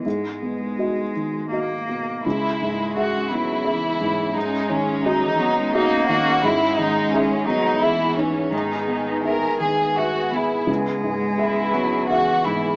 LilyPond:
<<
  \new Staff \with { instrumentName = "Ambient pad" } { \time 3/4 \key cis \dorian \tempo 4 = 85 << { r2. | e''2. | fis''2. | gis''2.~ |
gis''2.~ | gis''2. | } \\ { r2. | <cis' gis'>2.~ | <cis' gis'>2. | <b gis'>2.~ |
<b gis'>2.~ | <b gis'>2. | } >> }
  \new Staff \with { instrumentName = "Felt piano" } { \time 3/4 \key cis \dorian gis,8 b8 <fis' dis''>8 dis8 <fis' dis''>8 b,8 | cis,8 gis,8 <gis' e''>8 b8 <gis' e''>8 gis,8 | gis,8 dis8 <fis' dis''>8 b8 <fis' dis''>8 dis8 | gis,8 dis8 <gis' e''>8 b8 <gis' e''>8 dis'8 |
gis,8 b8 <gis' e''>8 dis8 <gis' e''>8 b8 | cis,8 gis,8 <gis' e''>8 b8 <gis' e''>8 gis,8 | }
  \new Staff \with { instrumentName = "Violin section" } { \time 3/4 \key cis \dorian r2. | e'4 fis'8 e'4. | dis'8 cis'8 dis'4 dis'8 fis'8 | e'8 dis'8 cis'8 dis'8 e'8 cis'8 |
dis'4 ais'8 gis'8 fis'8 e'8 | r4 e'4 fis'8 e'8 | }
  \new Staff \with { instrumentName = "Cello" } { \clef bass \time 3/4 \key cis \dorian gis2 ais4 | gis4. fis8 e4 | gis4~ gis16 e16 fis16 gis16 ais4 | gis4. fis8 e4 |
dis2~ dis8 r8 | gis4. fis8 e4 | }
>>